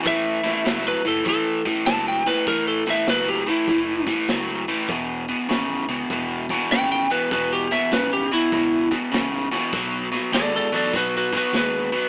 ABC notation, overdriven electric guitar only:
X:1
M:4/4
L:1/8
Q:"Swing" 1/4=99
K:E
V:1 name="Overdriven electric guitar" clef=bass
[A,,E,] [A,,E,] [A,,F,] [A,,E,] [A,,E,] [A,,E,] [A,,F,] [A,,E,] | [A,,E,] [A,,E,] [A,,F,] [A,,E,] [A,,E,] [A,,E,] [A,,F,] [A,,E,] | [E,,B,,] [E,,B,,] [E,,C,] [E,,B,,] [E,,B,,] [E,,B,,] [E,,C,] [E,,B,,] | [E,,B,,] [E,,B,,] [E,,C,] [E,,B,,] [E,,B,,] [E,,B,,] [E,,C,] [E,,B,,] |
[B,,F,] [B,,F,] [B,,G,] [B,,F,] [B,,F,] [B,,F,] [B,,G,] [B,,F,] |]